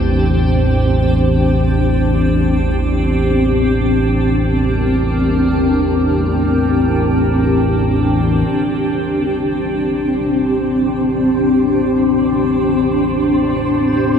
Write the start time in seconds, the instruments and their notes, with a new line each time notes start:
Already playing: synth drone A1 E2, ambient pad C4 D4 G4 C5
3.87 ambient pad A#4
8.51 synth drone A1 E2, synth texture C5
12.42 ambient pad C5